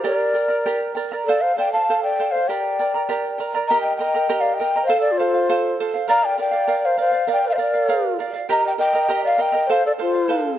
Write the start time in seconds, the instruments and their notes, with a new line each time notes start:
0.03 charango G4 A#4 D5 G5 A#5, quena A#4 D5
0.34 charango A#4 D5 G5 A#5
0.48 charango A#4 D5 A#5
0.66 charango G4 A#4 D5 G5 A#5
0.95 charango A#4 D5 G5 A#5
1.12 charango A#4 D5 A#5
1.24 quena A4 D5, charango A4
1.29 charango C5 F5
1.41 quena C5 F5
1.56 charango A4 C5 F5, quena D5 G5
1.72 charango C5 F5, quena F5 A5
1.89 charango A4 C5 F5
2.03 quena D5 G5
2.19 charango A4 C5 F5
2.31 quena C5 F5
2.35 charango C5 F5
2.48 charango G4 A#4 D5 G5 A#5, quena D5 G5
2.79 charango A#4 D5 G5 A#5
2.94 charango A#4 D5 A#5
3.09 charango G4 A#4 D5 G5 A#5
3.38 charango A#4 D5 G5 A#5
3.55 charango A#4 D5 A#5
3.68 charango G4 A#4 D#5 G5 A#5, quena D#5 A#5
3.81 quena D#5 G5
3.96 quena D#5 G5, charango G5 A#5
4.00 charango A#4 D#5
4.14 charango A#4 D#5 A#5
4.29 charango G4 A#4 D#5 G5 A#5
4.40 quena D5 F5
4.54 quena D#5 G5
4.59 charango A#4 D#5 G5 A#5
4.76 charango A#4 D#5 A#5
4.82 quena C5 F5
4.89 charango A4 C5 F5
4.98 quena A4 D5
5.12 quena F4
5.18 charango A4 C5 F5, quena C5
5.34 charango C5 F5
5.49 charango A4 C5 F5
5.80 charango A4 C5 F5
5.94 charango C5 F5
6.08 charango A#4 D5 F5, quena F5 A#5
6.24 quena D5 G5
6.38 charango A#4 D5 F5, quena D5 G5
6.51 charango D5 F5
6.67 charango A#4 D5 F5
6.85 quena C5 F5
6.97 charango A#4 D5 F5, quena C5 F5
7.12 charango D5 F5
7.27 charango A#4 D5 F5, quena D5
7.33 quena G5
7.45 quena A#4 C5
7.50 quena C5 D5 F5
7.56 charango A#4 D5 F5, quena F5
7.60 quena A#4 D5
7.74 charango D5 F5
7.88 charango A#4 D5 F5
8.19 charango A#4 D5 F5
8.33 charango D5 F5
8.49 charango G4 A#4 D#5 G5 A#5, quena D#5 A#5
8.65 quena D#5 G5
8.78 charango A#4 D#5 G5 A#5, quena D#5 G5
8.93 charango A#4 D#5 A#5
9.09 charango G4 A#4 D#5 G5 A#5
9.23 quena D5 F5
9.38 charango A#4 D#5 G5 A#5, quena D#5 G5
9.52 charango A#4 D#5 A#5
9.67 charango A4 C5 F5, quena C5
9.71 quena F5
9.86 quena A4 D5
9.98 quena F4 C5, charango A4 C5 F5
10.14 charango C5 F5
10.28 charango A4 C5 F5